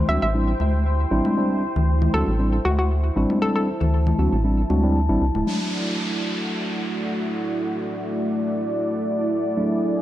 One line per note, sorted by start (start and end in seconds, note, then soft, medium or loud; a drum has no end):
0.00 10.02 E4 medium
0.00 5.47 C5 medium
0.00 3.09 G5 medium
0.08 0.18 D2 medium
0.08 0.25 G3 medium
0.08 0.25 C4 medium
0.08 0.25 D4 medium
0.08 0.25 F#4 medium
0.08 0.17 E5 medium
0.22 0.54 A1 loud
0.22 0.30 E5 medium
0.34 0.51 G3 medium
0.34 0.51 C4 medium
0.34 0.51 D4 medium
0.34 0.51 E4 medium
0.60 1.05 D2 medium
0.60 high conga medium
1.11 1.21 A1 medium
1.11 1.33 G3 loud
1.11 1.33 C4 medium
1.11 1.33 D4 medium
1.11 1.33 E4 loud
1.25 high conga medium
1.37 1.62 G3 medium
1.37 1.62 C4 medium
1.37 1.62 D4 medium
1.37 1.62 E4 medium
1.76 2.08 D2 loud
1.76 low conga medium
2.02 high conga medium
2.02 low conga medium
2.14 2.23 D2 medium
2.14 2.30 G3 medium
2.14 2.30 C4 medium
2.14 2.30 D4 medium
2.14 2.30 F#4 medium
2.14 2.34 A4 medium
2.27 2.59 A1 loud
2.39 2.56 G3 medium
2.39 2.56 C4 medium
2.39 2.56 D4 medium
2.39 2.56 E4 medium
2.65 3.10 D2 medium
2.65 2.74 F#4 medium
2.65 high conga medium
2.79 2.86 F#4 medium
2.94 7.22 A5 medium
3.16 3.26 A1 medium
3.16 3.38 G3 loud
3.16 3.38 C4 medium
3.16 3.38 D4 medium
3.16 3.38 E4 loud
3.30 high conga medium
3.42 3.67 G3 medium
3.42 3.67 C4 medium
3.42 3.67 D4 medium
3.42 3.67 E4 medium
3.42 3.51 A4 medium
3.56 3.63 A4 medium
3.81 4.13 D2 loud
3.81 low conga medium
4.07 high conga medium
4.07 low conga medium
4.19 4.28 D2 loud
4.19 4.35 G3 medium
4.19 4.35 C4 medium
4.19 4.35 D4 medium
4.19 4.35 F#4 medium
4.32 4.64 A1 loud
4.44 4.61 G3 medium
4.44 4.61 C4 medium
4.44 4.61 D4 medium
4.44 4.61 E4 medium
4.70 5.09 D2 medium
4.70 4.82 G3 medium
4.70 4.82 C4 medium
4.70 4.82 D4 medium
4.70 4.82 F#4 medium
4.70 high conga medium
4.84 4.99 G3 medium
4.84 4.99 C4 medium
4.84 4.99 D4 medium
4.84 4.99 E4 loud
5.09 5.18 A1 medium
5.09 5.24 G3 loud
5.09 5.24 C4 medium
5.09 5.24 D4 medium
5.09 5.24 E4 loud
5.21 5.31 C2 medium
5.35 5.43 D1 medium
5.35 high conga medium
5.47 9.54 F#3 medium
5.47 9.54 A3 medium
5.47 10.02 A3 medium
5.47 9.54 D4 medium
5.47 10.02 E4 medium
5.47 9.55 E4 medium
5.47 9.53 F#4 medium
5.47 10.02 D5 medium
5.47 downlifter medium
5.58 10.02 A3 medium
6.79 10.02 D5 medium
7.60 10.02 F#5 medium
9.57 10.02 F#3 medium
9.57 10.02 A3 medium
9.57 10.02 D4 medium
9.57 10.02 E4 medium
9.57 10.02 G#4 medium